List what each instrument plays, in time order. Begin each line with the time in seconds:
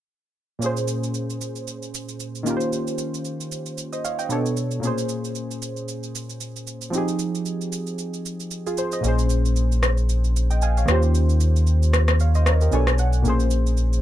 0.59 synth keys A#2 A#3 C#4, shaker
0.64 synth keys G#4 C5
0.77 shaker
0.88 shaker
1.03 shaker
1.14 shaker
1.30 shaker
1.41 shaker
1.56 shaker
1.67 shaker
1.82 shaker
1.94 shaker
2.09 shaker
2.20 shaker
2.35 shaker
2.43 synth keys D#3 A#3 C#4, shaker
2.47 synth keys F4 G4 A#4
2.57 synth keys C5, shaker
2.73 shaker
2.87 shaker
2.98 shaker
3.14 shaker
3.25 shaker
3.41 shaker
3.52 shaker
3.66 shaker
3.78 shaker
3.93 synth keys C5 D#5, shaker
4.05 synth keys C#5 F5, shaker
4.19 synth keys D#5 G5, shaker
4.29 synth keys B2 B3 D4 A4 C#5, shaker
4.46 shaker
4.57 shaker
4.71 shaker
4.80 synth keys A#2 A#3 C#4, shaker
4.85 synth keys G#4 C5
4.98 shaker
5.09 shaker
5.24 shaker
5.35 shaker
5.51 shaker
5.62 shaker
5.77 shaker
5.88 shaker
6.03 shaker
6.15 shaker
6.29 shaker
6.41 shaker
6.56 shaker
6.67 shaker
6.81 shaker
6.90 synth keys F3 C4 D#4, shaker
6.96 synth keys G4 G#4
7.08 shaker
7.19 shaker
7.35 shaker
7.46 shaker
7.61 shaker
7.72 shaker
7.87 shaker
7.98 shaker
8.14 shaker
8.26 shaker
8.40 shaker
8.51 shaker
8.67 synth keys F4 G#4, shaker
8.77 synth keys G#4 C5, shaker
8.92 synth keys C5 D#5, shaker
9.01 sub bass A#1, synth keys A#2 A#3 C#4, shaker
9.06 synth keys G#4 C5
9.19 shaker
9.29 shaker
9.45 shaker
9.56 shaker
9.72 shaker
9.83 cross-stick, shaker
9.97 shaker
10.09 shaker
10.24 shaker
10.36 shaker
10.51 synth keys D#5 G5, shaker
10.62 synth keys F5 G#5, shaker
10.77 synth keys C#5 F5, shaker
10.85 sub bass D#2, synth keys D#3 A#3 C#4, cross-stick, shaker
10.90 synth keys F4 G4 C5
11.02 shaker
11.15 shaker
11.29 shaker
11.40 shaker
11.56 shaker
11.67 shaker
11.83 shaker
11.93 cross-stick, shaker
12.08 cross-stick, shaker
12.20 synth keys C#5 F5, shaker
12.35 synth keys C5 D#5, shaker
12.46 synth keys A#4 C#5, cross-stick, shaker
12.61 synth keys G4 A#4, shaker
12.71 sub bass B1, synth keys B2 B3 D4 A4 C#5 G#5, shaker
12.87 cross-stick, shaker
12.98 synth keys F#5, shaker
13.13 shaker
13.22 sub bass A#1, synth keys A#2 A#3 C#4, shaker
13.28 synth keys G#4 C5
13.40 shaker
13.51 shaker
13.67 shaker
13.77 shaker
13.93 shaker